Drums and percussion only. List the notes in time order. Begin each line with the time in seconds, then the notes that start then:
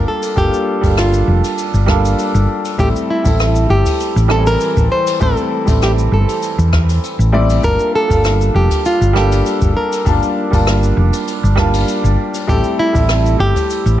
0.22 open hi-hat, cabasa
0.37 kick, open hi-hat, cabasa
0.54 cabasa
0.83 kick, open hi-hat, cabasa
0.97 cross-stick, open hi-hat, cabasa
1.14 cabasa
1.44 open hi-hat, cabasa
1.57 open hi-hat, cabasa
1.74 cabasa
1.88 kick, cross-stick
2.05 open hi-hat, cabasa
2.18 open hi-hat, cabasa
2.35 cabasa
2.65 open hi-hat, cabasa
2.79 kick, open hi-hat, cabasa
2.96 cabasa
3.25 kick, open hi-hat, cabasa
3.39 cross-stick, open hi-hat, cabasa
3.56 cabasa
3.86 kick, open hi-hat, cabasa
4.00 open hi-hat, cabasa
4.17 cabasa
4.30 cross-stick
4.47 open hi-hat, cabasa
4.60 open hi-hat, cabasa
4.77 kick, cabasa
5.07 open hi-hat, cabasa
5.21 kick, cabasa
5.37 cabasa
5.67 kick, open hi-hat, cabasa
5.82 cross-stick, open hi-hat, cabasa
5.99 cabasa
6.29 open hi-hat, cabasa
6.42 open hi-hat, cabasa
6.59 cabasa
6.73 kick, cross-stick
6.89 open hi-hat, cabasa
7.03 open hi-hat, cabasa
7.20 cabasa
7.50 open hi-hat, cabasa
7.64 kick, open hi-hat, cabasa
7.79 cabasa
8.10 kick, open hi-hat, cabasa
8.24 cross-stick, open hi-hat, cabasa
8.41 cabasa
8.71 kick, open hi-hat, cabasa
8.85 open hi-hat, cabasa
9.02 cabasa
9.16 cross-stick
9.32 open hi-hat, cabasa
9.46 open hi-hat, cabasa
9.62 kick, cabasa
9.93 open hi-hat, cabasa
10.06 kick, open hi-hat, cabasa
10.23 cabasa
10.53 kick, open hi-hat, cabasa
10.67 cross-stick, open hi-hat, cabasa
10.83 cabasa
11.13 open hi-hat, cabasa
11.27 open hi-hat, cabasa
11.45 cabasa
11.57 kick, cross-stick
11.74 open hi-hat, cabasa
11.88 open hi-hat, cabasa
12.05 cabasa
12.34 open hi-hat, cabasa
12.48 kick, open hi-hat, cabasa
12.64 cabasa
12.95 kick, open hi-hat, cabasa
13.09 cross-stick, open hi-hat, cabasa
13.26 cabasa
13.56 kick, open hi-hat, cabasa
13.70 open hi-hat, cabasa
13.86 cabasa